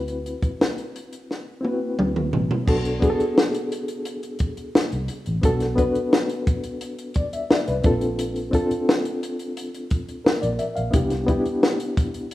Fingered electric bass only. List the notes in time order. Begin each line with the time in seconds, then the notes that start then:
Already playing: D2
0.43 muted fingered electric bass stroke
1.99 D2
2.33 A1
2.68 B1
3.20 muted fingered electric bass stroke
4.75 muted fingered electric bass stroke
4.93 C2
5.27 A1
5.44 B1
5.96 muted fingered electric bass stroke
7.51 muted fingered electric bass stroke
7.68 C2
7.85 A#1
8.71 muted fingered electric bass stroke
10.26 muted fingered electric bass stroke
10.43 A#1
10.78 A#1
10.94 C2
11.46 muted fingered electric bass stroke